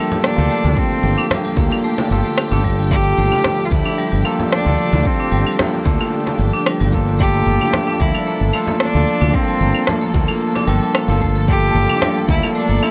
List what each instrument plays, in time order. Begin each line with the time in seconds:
Already playing: tine electric piano F3 A#3 F4 A4, string section F3 D4 G4
0.10 marimba G3, low conga, cabasa
0.23 marimba A#3, cello D4, cross-stick, cabasa
0.37 fretless electric bass D2, tine electric piano A#3 F4 A4, high conga, cabasa
0.50 marimba A3, cabasa
0.64 fretless electric bass D2, marimba D3, high conga, cabasa
0.77 cello C4, tine electric piano F4 A4, kick, cabasa
0.91 muted conga, cabasa
1.03 fretless electric bass G1, cabasa
1.18 marimba D4, cabasa, claves
1.30 marimba G3, cello A#3, cross-stick, low conga, cabasa
1.45 marimba G3, cabasa
1.56 fretless electric bass D2, tine electric piano A#3 F4 A4, marimba A#3, kick, muted conga, cabasa
1.71 muted conga, cabasa, claves
1.84 marimba A3, cabasa
1.98 marimba D3, cross-stick, muted conga
2.10 fretless electric bass G1, tine electric piano F4 A4, high conga, cabasa
2.25 cabasa
2.38 cross-stick, cabasa, claves
2.51 fretless electric bass G1, marimba D4, tine electric piano F4 A4, high conga, cabasa
2.64 marimba G3, kick, cabasa
2.79 marimba G3, cabasa
2.91 marimba A#3, tine electric piano F4 A4, cello G4, kick, cabasa
3.06 cabasa
3.17 fretless electric bass G1, marimba A3, cabasa
3.32 marimba D3, high conga, cabasa, claves
3.44 cross-stick, low conga, cabasa
3.59 cabasa
3.65 cello F4
3.71 fretless electric bass D2, tine electric piano F3 A4, cello E4, kick, muted conga, cabasa
3.85 marimba D4, muted conga, cabasa, claves
3.98 marimba G3, cabasa
4.12 fretless electric bass G1, marimba G3, high conga
4.24 tine electric piano A#3 F4 A4, marimba A#3, cabasa, claves
4.40 low conga, cabasa
4.52 marimba A3, cello D4, cross-stick, cabasa
4.66 fretless electric bass D2, marimba D3, tine electric piano F4 A4, high conga, cabasa
4.79 cabasa
4.93 fretless electric bass D2, high conga, cabasa
5.05 cello C4, tine electric piano F4 A4, kick, cabasa
5.20 marimba D4, muted conga, cabasa
5.31 fretless electric bass G1, marimba G3, cabasa
5.46 marimba G3, cabasa, claves
5.59 marimba A#3, cello A#3, cross-stick, low conga, cabasa
5.74 cabasa
5.85 fretless electric bass D2, marimba A3, tine electric piano F4 A4, kick, muted conga, cabasa
5.99 marimba D3, muted conga, cabasa, claves
6.13 cabasa
6.27 cross-stick, muted conga
6.39 fretless electric bass G1, high conga, cabasa
6.53 marimba D4, cabasa
6.66 marimba G3, cross-stick, cabasa, claves
6.80 fretless electric bass G1, marimba G3, high conga, cabasa
6.92 tine electric piano A#3 F4 A4, marimba A#3, kick, cabasa
7.08 cabasa
7.19 marimba A3, tine electric piano F4 A4, cello G4, string section A4, kick, cabasa
7.34 marimba A#3, cabasa
7.46 fretless electric bass G1, cabasa
7.61 high conga, cabasa, claves
7.73 cross-stick, low conga, cabasa
7.87 marimba D4, cabasa
7.99 fretless electric bass D2, tine electric piano F3 A#3 A4, marimba G3, cello E4, kick, muted conga, cabasa
8.14 marimba G3, muted conga, cabasa, claves
8.27 marimba A#3, cabasa
8.41 fretless electric bass G1, high conga
8.53 marimba A3, tine electric piano F4 A4, cabasa, claves
8.67 marimba A#3, low conga, cabasa
8.80 cello D4, cross-stick, cabasa
8.94 fretless electric bass D2, tine electric piano F4 A4, high conga, cabasa
9.07 cabasa
9.21 fretless electric bass D2, marimba D4, high conga, cabasa
9.32 marimba G3, tine electric piano A#3 F4, cello C4, kick, cabasa
9.36 tine electric piano A4
9.48 marimba G3, muted conga, cabasa
9.60 fretless electric bass G1, marimba A#3, cabasa
9.74 cabasa, claves
9.87 marimba A3, cello A#3, cross-stick, low conga, cabasa
9.96 cello A3
10.01 marimba A#3, cello A#3, cabasa
10.14 fretless electric bass D2, tine electric piano F4 A4, kick, muted conga, cabasa
10.28 muted conga, cabasa, claves
10.41 cabasa
10.55 marimba D4, cross-stick, muted conga
10.67 fretless electric bass G1, marimba G3, tine electric piano A#3 F4 A4, high conga, cabasa
10.82 marimba G3, cabasa
10.94 marimba A#3, cross-stick, cabasa, claves
11.08 fretless electric bass G1, tine electric piano A#3 F4 A4, high conga, cabasa
11.21 marimba A3, kick, cabasa
11.35 marimba A#3, cabasa
11.48 tine electric piano F4 A4, cello G4, kick, cabasa
11.62 cabasa
11.74 fretless electric bass G1, cabasa
11.89 marimba D4, high conga, cabasa, claves
12.01 marimba G3, cross-stick, low conga, cabasa
12.16 marimba G3, cabasa
12.28 fretless electric bass D2, marimba A#3, tine electric piano A#3 F4 A4, cello E4, kick, muted conga, cabasa
12.43 muted conga, cabasa, claves
12.55 marimba A3, cello D4, cabasa
12.69 fretless electric bass G1, marimba A#3, high conga
12.82 cello E4, tine electric piano F4 A4, cabasa, claves